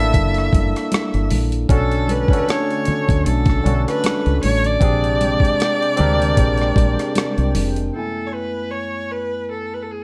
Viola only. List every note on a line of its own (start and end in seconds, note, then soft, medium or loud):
0.00 1.31 E5 loud
1.72 2.12 A4 medium
2.10 2.51 B4 medium
2.50 3.26 C#5 medium
3.26 3.83 A4 medium
3.88 4.39 B4 loud
4.44 4.67 C#5 loud
4.66 7.55 D5 loud
7.95 8.28 A4 medium
8.27 8.36 C#5 soft
8.34 8.73 B4 medium
8.71 9.13 C#5 medium
9.11 9.50 B4 medium
9.51 9.75 A4 medium
9.74 9.84 B4 medium
9.82 9.93 A4 medium
9.91 10.03 G#4 medium